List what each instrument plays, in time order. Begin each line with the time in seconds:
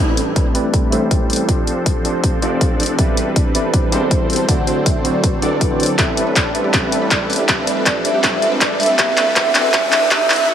Already playing: tine electric piano A3 E4
0.00 analog synth bass A1, supersaw synth G3 C4 D4 A4 B4, tine electric piano C4 G4 B4 D5, soft synth lead E5
0.17 closed hi-hat
0.36 soft synth lead D5, kick, closed hi-hat
0.54 tine electric piano A3 C4 E4 G4 B4 D5, soft synth lead E5, closed hi-hat
0.74 soft synth lead C5, kick, closed hi-hat
0.90 analog synth bass A1, supersaw synth G3 C4 D4 A4 C5, tine electric piano A3 E4 G4 C5 E5 B5, closed hi-hat
1.11 kick, closed hi-hat
1.30 closed hi-hat
1.33 closed hi-hat
1.36 closed hi-hat
1.47 analog synth bass F1, tine electric piano F3 F4 G4 A4 D5, supersaw synth F3 C4 D4 A4 C5, soft synth lead D5, kick, closed hi-hat
1.67 closed hi-hat
1.86 soft synth lead C5, kick, closed hi-hat
2.04 tine electric piano F3 F4 G4 A4 D5, soft synth lead D5, closed hi-hat
2.24 soft synth lead C5, kick, closed hi-hat
2.40 analog synth bass F1, tine electric piano F3 F4 G4 A4, supersaw synth F3 C4 D4 A4 D5, closed hi-hat
2.44 tine electric piano F5
2.61 kick, closed hi-hat
2.80 closed hi-hat
2.83 closed hi-hat
2.86 closed hi-hat
2.97 analog synth bass E1, tine electric piano E3 C4 E4 G4 B4, supersaw synth G3 C4 D4 A4, soft synth lead E5, kick, closed hi-hat
3.01 tine electric piano D5
3.17 closed hi-hat
3.36 soft synth lead D5, kick, closed hi-hat
3.54 tine electric piano E3 C4 E4 G4 B4 D5, soft synth lead E5, closed hi-hat
3.74 soft synth lead C5, kick, closed hi-hat
3.90 analog synth bass E1, tine electric piano E3 E4 G4 C5 B5, supersaw synth G3 C4 D4 A4 C5, closed hi-hat
3.94 tine electric piano E5
4.11 kick, closed hi-hat
4.30 closed hi-hat
4.33 closed hi-hat
4.36 closed hi-hat
4.47 analog synth bass D1, tine electric piano D3 C4 E4 F#4 D5, supersaw synth F#3 C4 A4, soft synth lead F#5, kick, closed hi-hat
4.67 closed hi-hat
4.86 soft synth lead E5, kick, closed hi-hat
5.04 tine electric piano D3 C4 E4 F#4 D5, soft synth lead D5, closed hi-hat
5.24 soft synth lead B4, kick, closed hi-hat
5.42 analog synth bass D1, supersaw synth F#3 C4 D4 A4 D5, closed hi-hat
5.61 kick, closed hi-hat
5.70 tine electric piano D3 C4 E4 F#4 C5
5.80 closed hi-hat
5.83 closed hi-hat
5.86 closed hi-hat
5.98 analog synth bass A1, supersaw synth G3 C4 D4 A4 B4, synth arpeggio sound G4, soft synth lead E5, kick, clap, closed hi-hat, riser
6.17 synth arpeggio sound D5, closed hi-hat
6.27 synth arpeggio sound B4
6.36 synth arpeggio sound A4, soft synth lead D5, kick, clap, closed hi-hat
6.55 synth arpeggio sound D5, soft synth lead E5, closed hi-hat
6.64 synth arpeggio sound G4
6.73 analog synth bass A1, supersaw synth G3 C4 D4 A4 B4, synth arpeggio sound G4, kick, clap, closed hi-hat
6.92 synth arpeggio sound D5, closed hi-hat
7.02 synth arpeggio sound B4
7.11 synth arpeggio sound A4, soft synth lead D5, kick, clap, closed hi-hat
7.30 synth arpeggio sound D5, soft synth lead E5, closed hi-hat, open hi-hat
7.36 synth arpeggio sound G4, closed hi-hat
7.48 analog synth bass F1, supersaw synth G3 D4 A4, synth arpeggio sound G4, kick, clap, closed hi-hat
7.67 synth arpeggio sound D5, closed hi-hat
7.77 synth arpeggio sound B4
7.86 synth arpeggio sound A4, soft synth lead D5, kick, clap, closed hi-hat
8.05 synth arpeggio sound D5, soft synth lead E5, closed hi-hat
8.14 synth arpeggio sound G4
8.24 analog synth bass F1, supersaw synth G3 C4 D4 A4 B4, synth arpeggio sound G4, soft synth lead E5, kick, clap, closed hi-hat
8.42 synth arpeggio sound D5, closed hi-hat
8.52 synth arpeggio sound B4
8.61 synth arpeggio sound A4, soft synth lead D5, kick, clap, closed hi-hat
8.80 synth arpeggio sound D5, soft synth lead E5, closed hi-hat, open hi-hat
8.86 synth arpeggio sound G4, closed hi-hat
8.98 supersaw synth G3 C4 D4 A4 B4, synth arpeggio sound G4, soft synth lead E5, kick, clap, closed hi-hat
9.17 synth arpeggio sound D5, clap, closed hi-hat
9.27 synth arpeggio sound B4
9.36 analog synth bass E1, supersaw synth G3 C4 D4 A4 B4, synth arpeggio sound G4, soft synth lead E5, kick, clap, closed hi-hat
9.55 synth arpeggio sound D5, clap, closed hi-hat
9.64 synth arpeggio sound B4
9.73 supersaw synth G3, synth arpeggio sound G4, soft synth lead E5, kick, clap, closed hi-hat
9.92 synth arpeggio sound D5, clap, closed hi-hat
10.02 synth arpeggio sound B4
10.11 supersaw synth G3 C4 D4 A4, synth arpeggio sound G4, soft synth lead E5, kick, clap, closed hi-hat
10.30 synth arpeggio sound D5, clap, closed hi-hat, open hi-hat
10.36 synth arpeggio sound B4, closed hi-hat
10.49 synth arpeggio sound F#4